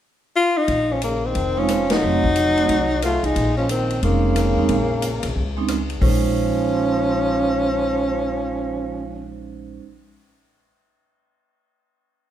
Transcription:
0.36 tenor saxophone F4
0.58 tenor saxophone D#4
0.68 upright bass A#1, kick, ride
0.91 trombone F3, tenor saxophone C#4
1.02 trombone C#3, tenor saxophone A#3, hi-hat pedal, ride
1.25 trombone D#3, tenor saxophone C4
1.35 upright bass F1, kick, ride
1.57 trombone F3, vibraphone G#3 C4 C#4 D#4, tenor saxophone C#4
1.68 cross-stick, hi-hat pedal, ride
1.90 trombone F#3, tenor saxophone D#4, snare, ride
2.03 upright bass F1, vibraphone F#3 A3 C4 D#4
2.24 kick
2.36 hi-hat pedal, ride
2.57 vibraphone F#3 A3 C4 D#4, ride
2.69 upright bass C2, kick, ride
3.02 trombone A3, tenor saxophone F4, cross-stick, hi-hat pedal, ride
3.23 upright bass C2, trombone G#3, tenor saxophone D#4, ride
3.36 upright bass A#1, kick, ride
3.58 trombone F3, tenor saxophone C#4
3.69 trombone D#3, tenor saxophone C4, hi-hat pedal, ride
3.90 ride
4.03 upright bass F1, trombone C#3, vibraphone G#3 C4 C#4 D#4, tenor saxophone A#3, kick, ride
4.36 cross-stick, hi-hat pedal, ride
4.57 upright bass F2, vibraphone G#3 C4 C#4 D#4
4.69 upright bass A#1, kick, ride
5.02 hi-hat pedal, ride
5.23 upright bass B1, ride
5.35 upright bass C#2, kick
5.57 vibraphone G#3 C4 C#4 D#4
5.68 cross-stick, hi-hat pedal, ride
5.90 ride
6.00 upright bass A#1, trombone F3, vibraphone G#3 C#4 D#4 C5, tenor saxophone C#4, kick, open hi-hat

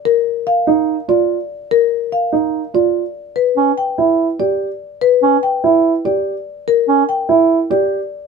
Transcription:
0.05 marimba A#4
0.47 marimba F5
0.67 grand piano D#4
1.08 grand piano F4, marimba D5
1.71 marimba A#4
2.12 marimba F5
2.32 grand piano D#4
2.74 grand piano F4, marimba D5
3.36 marimba B4
3.57 bass clarinet C#4
3.78 marimba G5
3.98 grand piano E4
4.39 grand piano G4, marimba D5
5.01 marimba B4
5.22 bass clarinet C#4
5.43 marimba G5
5.64 grand piano E4
6.05 grand piano G4, marimba D5
6.68 marimba A#4
6.88 bass clarinet C#4
7.09 marimba G5
7.29 grand piano E4
7.70 grand piano G4, marimba D5

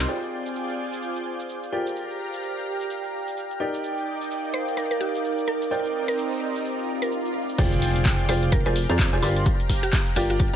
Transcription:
Already playing: ambient pad C4
0.08 ambient pad F4, upright piano F4 G#4 C5 D5 G5, analog synth pad F4 G#4 D5 G6, shaker
0.23 shaker
0.46 shaker
0.56 shaker
0.62 ambient pad C5
0.70 shaker
0.83 ambient pad G#4
0.93 shaker
1.03 shaker
1.16 shaker
1.40 shaker
1.49 shaker
1.63 shaker
1.72 upright piano F4 G4 A#4 D5 G5, ambient pad G4, analog synth pad G4 F5 A#5
1.87 shaker
1.96 ambient pad D5, shaker
2.10 shaker
2.34 shaker
2.43 shaker
2.48 ambient pad G5
2.57 ambient pad A#5, shaker
2.80 shaker
2.90 shaker
3.04 shaker
3.27 shaker
3.37 shaker
3.51 shaker
3.60 analog synth pad D#4 D5 G5, upright piano D#4 G4 A#4 D5 G5, ambient pad D#4
3.74 ambient pad A#4, shaker
3.84 shaker
3.98 ambient pad F5, shaker
4.21 shaker
4.31 shaker
4.45 shaker
4.54 synth pluck C5
4.68 shaker
4.77 synth pluck A#4, shaker
4.91 synth pluck A#4, shaker
5.01 synth pluck G4
5.15 shaker
5.25 shaker
5.38 shaker
5.48 synth pluck A#4
5.62 shaker
5.71 analog synth pad C4 D#4 A#4, ambient pad C4, upright piano D#4 A#4 C5 D5 G5, shaker
5.84 ambient pad G4, shaker
6.08 synth pluck A#4, shaker
6.18 shaker
6.32 shaker
6.56 ambient pad D#4, shaker
6.65 swell, shaker
6.79 shaker
7.02 synth pluck A#4, shaker
7.12 shaker
7.26 shaker
7.49 shaker
7.58 analog synth bass F1, upright piano F4 G#4 C5 D5 G5, ambient pad F4, analog synth pad F5 D6 G6, kick, closed hi-hat, crash, impact, shaker
7.72 closed hi-hat
7.82 open hi-hat, shaker
7.96 closed hi-hat, shaker
8.05 kick, clap, closed hi-hat, shaker
8.12 ambient pad C5
8.19 closed hi-hat
8.29 analog synth bass F1, upright piano F4 G#4 C5 D5 G5, synth pluck C5, open hi-hat, shaker
8.33 ambient pad G#5
8.43 closed hi-hat, shaker
8.52 synth pluck A#4, kick, closed hi-hat, shaker
8.66 analog synth bass F1, upright piano F4 G#4 C5 D5 G#5, synth pluck A#4, closed hi-hat
8.76 open hi-hat, shaker
8.89 analog synth bass F2, upright piano F4 G#4 C5 D5 A#5, closed hi-hat, shaker
8.99 kick, clap, closed hi-hat, shaker
9.13 analog synth bass F1, upright piano F4 G#4 C5 D5 G#5
9.22 analog synth bass G1, upright piano F4 G4 A#4 D5 C6, analog synth pad G4 F5 A#5, ambient pad G4, open hi-hat, shaker
9.36 closed hi-hat, shaker
9.46 kick, closed hi-hat, shaker
9.60 closed hi-hat
9.69 kick, open hi-hat, shaker
9.75 ambient pad A#5 D6
9.83 synth pluck G4, closed hi-hat, shaker
9.93 ambient pad G5, kick, clap, closed hi-hat, shaker
10.07 closed hi-hat
10.16 analog synth bass G1, synth pluck F4, upright piano F4 G4 A#4 D5 G5, open hi-hat, shaker
10.30 synth pluck F4, closed hi-hat, shaker
10.40 kick, closed hi-hat, shaker

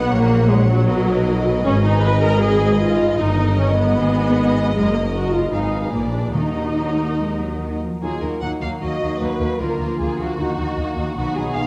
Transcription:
Already playing: harp B2 F#3 D#4 F#4 B4, viola section B3, violin section F#5
0.11 double bass section A#1, tuba A#1, cello section A#2, harp A#2, viola section A#3, violin section C#5
0.30 harp A#3
0.49 viola section G#3, harp C#5
0.68 viola section F#3, harp F#4
0.88 tuba B1, double bass section B1, harp B2, cello section B2, violin section A#4 B4 D#5
1.07 harp A#3
1.26 harp D#5
1.45 harp D#4
1.65 tuba G#1, double bass section G#1, harp G#2, cello section G#2, viola section C#4, violin section G#4
1.84 harp B3, viola section D#4
2.03 viola section B4, harp D#5
2.23 harp D#4, viola section A#4
2.43 harp D#3, viola section G#4
2.62 harp B3
2.82 viola section F4, harp D#5
3.00 harp D#4
3.20 double bass section G1, tuba G1, harp G2, cello section G2, viola section D#4, violin section A#4 D#5
3.39 harp A#3
3.58 viola section C#4, harp D#5
3.78 viola section B3, harp D#4
3.97 double bass section G#1, tuba G#1, cello section G#2, harp G#2, violin section G#4 D#5
4.17 harp G#3
4.36 harp D#5
4.56 harp D#4
4.75 tuba F#1, double bass section F#1, harp F#2, cello section F#2, viola section G#3, violin section A#4
4.94 viola section A#3, harp A#3
5.12 viola section F#4, harp D#5
5.32 harp D#4, viola section F4
5.52 double bass section G#1, tuba G#1, harp G#2, cello section G#2, viola section D#4, violin section G#4 B4 F5
5.71 harp F4 B4
5.92 double bass section A#1, tuba A#1, harp A#2, cello section A#2, viola section A#3, violin section D5
6.12 harp D4 B4, viola section D4
6.34 double bass section D#2, tuba D#2, harp D#3, cello section D#3, timpani D#3, viola section D#4, violin section F#4 A#4 D#5
6.55 harp D#4
6.76 cello section F#3, harp F#4
6.97 cello section A#3, harp A#4
7.18 harp F#3, cello section G#3
7.40 cello section F#3, harp D#4
7.61 cello section D#3, harp F#4
7.81 cello section F3, harp A#4
8.01 double bass section D#2, cello section D#2, harp D#3, viola section F#3 A#3, violin section A#3 D#4 G#4, french horn section A#3 F#4, clarinet F4
8.22 double bass section D#2, cello section D#2, viola section F#3 A#3, violin section A#3 D#4 A#4, harp D#4
8.42 cello section D#2, double bass section D#2, viola section F#3 A#3, violin section A#3 D#4 F#5, clarinet D#4, harp F#4
8.61 cello section D#2, double bass section D#2, viola section F#3 A#3, violin section A#3 D#4 F5, harp A#4
8.81 cello section D#2, double bass section D#2, viola section F#3 A#3, harp F#3, violin section A#3 D#4 D#5, clarinet F#4
9.01 double bass section D#2, cello section D#2, viola section F#3 A#3, violin section A#3 D#4, harp D#4
9.20 double bass section D#2, cello section D#2, viola section F#3 A#3, violin section A#3 D#4 B4, harp F#4, clarinet F#4
9.40 double bass section D#2, cello section D#2, viola section F#3 A#3, violin section A#3 D#4, harp A#4
9.59 double bass section D2, cello section D2, harp D3, viola section F3 A#3, violin section A#3 F4 A#4, french horn section F4, clarinet F4
9.79 double bass section D2, cello section D2, viola section F3 A#3, harp F3, violin section A#3 F4
9.99 double bass section D2, cello section D2, viola section F3 A#3, violin section A#3 F4 G#4, harp A#4
10.19 double bass section D2, cello section D2, viola section F3 A#3, violin section A#3 F4 F#4, harp F4
10.38 double bass section D#2, cello section D#2, viola section D#3 A#3, harp D#3, french horn section D#4, violin section D#4 F#4, clarinet D#4
10.58 double bass section D#2, cello section D#2, viola section D#3 A#3, violin section D#4 F#4, harp D#4
10.78 double bass section D#2, cello section D#2, viola section D#3 A#3, clarinet A#3, violin section D#4 F#4, harp F#4
10.96 double bass section D#2, cello section D#2, viola section D#3 A#3, violin section D#4 F#4, harp A#4
11.16 double bass section B1, cello section B2, harp B2, viola section F#3 B3, french horn section B3, clarinet B3, violin section D#4 F#4
11.35 double bass section B1, cello section B2, harp F#3, viola section F#3 B3, violin section D#4 F#4 G#4
11.55 double bass section B1, cello section B2, viola section F#3 B3, violin section D#4 F#4 F5, harp B4

